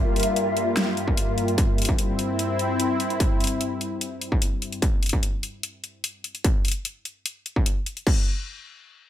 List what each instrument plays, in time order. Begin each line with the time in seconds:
Already playing: analog synth pad G2 G3 A#3 F4, ambient pad F4 A#4 E5 G5
0.16 closed hi-hat
0.20 closed hi-hat
0.23 closed hi-hat
0.36 closed hi-hat
0.57 closed hi-hat
0.77 snare, closed hi-hat
0.97 closed hi-hat
1.08 kick
1.17 closed hi-hat
1.38 closed hi-hat
1.48 closed hi-hat
1.58 analog synth pad C4 E4, kick, closed hi-hat
1.78 closed hi-hat
1.82 closed hi-hat
1.85 kick, closed hi-hat
1.99 closed hi-hat
2.19 closed hi-hat
2.39 closed hi-hat
2.59 closed hi-hat
2.80 closed hi-hat
3.00 closed hi-hat
3.10 closed hi-hat
3.20 kick, closed hi-hat
3.40 closed hi-hat
3.44 closed hi-hat
3.47 closed hi-hat
3.61 closed hi-hat
3.81 closed hi-hat
4.01 closed hi-hat
4.21 closed hi-hat
4.32 kick
4.42 closed hi-hat
4.62 closed hi-hat
4.72 closed hi-hat
4.82 kick, closed hi-hat
5.03 closed hi-hat
5.06 closed hi-hat
5.09 kick, closed hi-hat
5.23 closed hi-hat
5.43 closed hi-hat
5.63 closed hi-hat
5.84 closed hi-hat
6.04 closed hi-hat
6.24 closed hi-hat
6.35 closed hi-hat
6.44 kick, closed hi-hat
6.65 closed hi-hat
6.68 closed hi-hat
6.71 closed hi-hat
6.85 closed hi-hat
7.05 closed hi-hat
7.26 closed hi-hat
7.46 closed hi-hat
7.56 kick
7.66 closed hi-hat
7.86 closed hi-hat
7.97 closed hi-hat
8.07 kick, crash